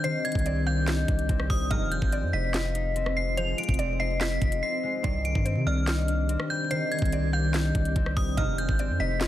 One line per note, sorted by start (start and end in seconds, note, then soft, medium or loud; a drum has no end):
0.00 1.67 D#3 medium
0.00 0.45 C4 loud
0.00 8.33 C4 medium
0.00 0.66 D4 medium
0.00 0.73 D#4 medium
0.00 1.67 G4 medium
0.00 0.43 C5 loud
0.00 1.67 D5 medium
0.04 1.76 D#3 loud
0.04 0.22 C7 medium
0.04 closed hi-hat medium
0.25 1.49 G3 medium
0.25 0.64 G#6 medium
0.25 closed hi-hat soft
0.32 1.05 C2 loud
0.32 kick loud
0.32 closed hi-hat medium
0.39 closed hi-hat medium
0.46 1.29 C4 medium
0.46 0.66 D5 medium
0.46 closed hi-hat medium
0.66 1.08 D4 medium
0.66 0.86 F5 medium
0.66 1.46 G6 medium
0.87 2.33 D#4 medium
0.87 snare loud
0.87 clap medium
0.87 closed hi-hat medium
1.08 1.28 C2 loud
1.08 2.39 D4 medium
1.08 kick medium
1.08 closed hi-hat medium
1.19 closed hi-hat medium
1.29 1.49 C2 loud
1.29 2.12 C4 medium
1.29 kick loud
1.29 closed hi-hat medium
1.40 cross-stick loud
1.50 1.70 C2 loud
1.50 1.76 G3 medium
1.50 1.67 D#6 medium
1.50 kick loud
1.50 open hi-hat medium
1.71 2.01 F1 loud
1.71 1.88 C2 loud
1.71 1.88 G#2 loud
1.71 1.88 D#3 loud
1.71 3.36 F3 loud
1.71 5.01 F4 medium
1.71 5.01 G#4 medium
1.71 2.10 D#5 loud
1.71 5.01 D#5 medium
1.71 1.88 F6 loud
1.71 kick loud
1.71 closed hi-hat medium
1.92 3.15 G#3 medium
1.92 2.31 G6 medium
1.92 closed hi-hat medium
2.02 2.24 G#1 loud
2.02 kick loud
2.12 2.95 C4 medium
2.12 2.32 D5 medium
2.12 closed hi-hat medium
2.23 2.33 F2 loud
2.33 3.54 F1 loud
2.33 2.75 D#4 medium
2.33 2.53 D#5 medium
2.33 3.13 B6 medium
2.54 4.20 F4 medium
2.54 snare loud
2.54 clap medium
2.54 closed hi-hat medium
2.75 3.99 D#4 medium
2.75 closed hi-hat medium
2.96 3.79 C4 medium
2.96 closed hi-hat medium
3.06 cross-stick loud
3.17 3.57 G#3 medium
3.17 3.34 C7 medium
3.37 5.09 F3 loud
3.37 3.77 C5 loud
3.37 3.55 F7 medium
3.37 closed hi-hat medium
3.58 4.82 G#3 medium
3.58 3.97 D7 medium
3.58 closed hi-hat medium
3.63 closed hi-hat medium
3.69 4.39 F1 loud
3.69 kick loud
3.69 closed hi-hat medium
3.74 closed hi-hat medium
3.79 4.62 C4 medium
3.79 3.99 D5 loud
3.79 closed hi-hat medium
4.00 4.41 D#4 medium
4.00 4.20 D#5 medium
4.00 4.17 C7 medium
4.21 6.73 F4 medium
4.21 4.60 B6 medium
4.21 snare loud
4.21 clap medium
4.21 closed hi-hat medium
4.42 4.62 F1 loud
4.42 5.73 D#4 medium
4.42 kick medium
4.42 closed hi-hat soft
4.52 closed hi-hat medium
4.62 5.45 C4 loud
4.62 5.02 C7 medium
4.83 5.09 G#3 medium
5.04 5.22 C2 medium
5.04 5.34 C2 loud
5.04 5.22 G2 loud
5.04 5.22 D#3 loud
5.04 8.34 D#3 medium
5.04 6.70 D#3 medium
5.04 8.34 G4 medium
5.04 5.43 D5 loud
5.04 8.34 D5 medium
5.04 5.22 C7 medium
5.04 kick loud
5.04 closed hi-hat medium
5.25 6.49 G3 medium
5.25 5.64 D7 medium
5.25 closed hi-hat medium
5.35 5.58 G2 loud
5.35 kick loud
5.45 6.29 C4 medium
5.45 5.65 C5 medium
5.45 closed hi-hat medium
5.56 5.66 C3 loud
5.67 6.37 C2 loud
5.67 6.08 D4 medium
5.67 5.87 D5 medium
5.67 6.46 F6 medium
5.87 7.40 D#4 medium
5.87 snare loud
5.87 clap medium
5.87 closed hi-hat medium
6.08 7.33 D4 medium
6.08 closed hi-hat medium
6.29 7.12 C4 medium
6.29 closed hi-hat medium
6.40 cross-stick loud
6.50 6.76 G3 medium
6.50 6.67 G6 medium
6.71 8.42 D#3 loud
6.71 7.10 C5 loud
6.71 6.88 C7 medium
6.71 closed hi-hat medium
6.92 8.15 G3 medium
6.92 7.31 G#6 medium
6.92 closed hi-hat soft
6.99 7.72 C2 loud
6.99 kick loud
6.99 closed hi-hat medium
7.06 closed hi-hat medium
7.12 7.95 C4 medium
7.12 7.32 D5 medium
7.12 closed hi-hat medium
7.33 7.75 D4 medium
7.33 7.53 F5 medium
7.33 8.13 G6 medium
7.54 8.99 D#4 medium
7.54 snare loud
7.54 clap medium
7.54 closed hi-hat medium
7.75 7.95 C2 loud
7.75 9.06 D4 medium
7.75 kick medium
7.75 closed hi-hat medium
7.85 closed hi-hat medium
7.96 8.16 C2 loud
7.96 8.79 C4 medium
7.96 kick loud
7.96 closed hi-hat medium
8.06 cross-stick loud
8.17 8.37 C2 loud
8.17 8.42 G3 medium
8.17 8.34 D#6 medium
8.17 kick loud
8.17 open hi-hat medium
8.37 8.67 F1 loud
8.37 8.55 C2 loud
8.37 8.55 G#2 loud
8.37 8.55 D#3 loud
8.37 9.28 F3 loud
8.37 9.28 C4 medium
8.37 9.28 F4 medium
8.37 9.28 G#4 medium
8.37 8.77 D#5 loud
8.37 9.28 D#5 medium
8.37 8.55 F6 medium
8.37 kick loud
8.37 closed hi-hat medium
8.58 9.28 G#3 medium
8.58 8.97 G6 medium
8.58 closed hi-hat medium
8.69 8.91 G#1 loud
8.69 kick loud
8.79 9.28 C4 medium
8.79 8.99 D5 medium
8.79 closed hi-hat medium
8.90 8.99 F2 loud
9.00 9.28 F1 loud
9.00 9.28 D#4 medium
9.00 9.20 D#5 medium
9.00 9.28 B6 medium
9.21 9.28 F4 medium
9.21 snare loud
9.21 clap medium
9.21 closed hi-hat medium